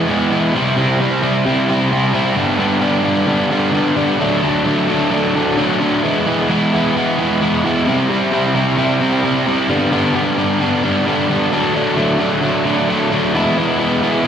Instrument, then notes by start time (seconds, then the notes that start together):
overdriven electric guitar
0.09 E3 G#3 B3 E4
0.32 E3 G#3 B3 E4
0.54 C3 G3 C4 E4
0.77 C3 G3 C4 E4
1.00 C3 G3 C4 E4
1.22 C3 G3 C4 E4
1.45 C3 G3 C4 E4
1.69 C3 G3 C4 E4
1.91 C3 G3 C4 E4
2.14 C3 G3 C4 E4
2.36 G2 D3 G3 B3 D4
2.58 G2 D3 G3 B3 D4
2.80 G2 D3 G3 B3 D4
3.03 G2 D3 G3 B3 D4
3.26 G2 D3 G3 B3 D4
3.50 G2 D3 G3 B3 D4
3.72 G2 D3 G3 B3 D4
3.95 G2 D3 G3 B3 D4
4.19 D3 F#3 A3 D4
4.42 D3 F#3 A3 D4
4.65 D3 F#3 A3 D4
4.88 D3 F#3 A3 D4
5.11 D3 F#3 A3 D4
5.35 D3 F#3 A3 D4
5.57 D3 F#3 A3 D4
5.80 D3 F#3 A3 D4
6.03 E3 G#3 B3 E4
6.27 E3 G#3 B3 E4
6.49 E3 G#3 B3 E4
6.73 E3 G#3 B3 E4
6.96 E3 G#3 B3 E4
7.18 E3 G#3 B3 E4
7.42 E3 G#3 B3 E4
7.64 E3 G#3 B3 E4
7.87 C3 G3 C4 E4
8.09 C3 G3 C4 E4
8.32 C3 G3 C4 E4
8.55 C3 G3 C4 E4
8.77 C3 G3 C4 E4
9.01 C3 G3 C4 E4
9.24 C3 G3 C4 E4
9.47 C3 G3 C4 E4
9.68 G2 D3 G3 B3 D4
9.91 G2 D3 G3 B3 D4
10.14 G2 D3 G3 B3 D4
10.37 G2 D3 G3 B3 D4
10.60 G2 D3 G3 B3 D4
10.83 G2 D3 G3 B3 D4
11.07 G2 D3 G3 B3 D4
11.29 G2 D3 G3 B3 D4
11.51 D3 F#3 A3 D4
11.74 D3 F#3 A3 D4
11.97 D3 F#3 A3 D4
12.19 D3 F#3 A3 D4
12.42 D3 F#3 A3 D4
12.65 D3 F#3 A3 D4
12.89 D3 F#3 A3 D4
13.11 D3 F#3 A3 D4
13.34 E3 G#3 B3 E4
13.57 E3 G#3 B3 E4
13.79 E3 G#3 B3 E4
14.01 E3 G#3 B3 E4
14.24 E3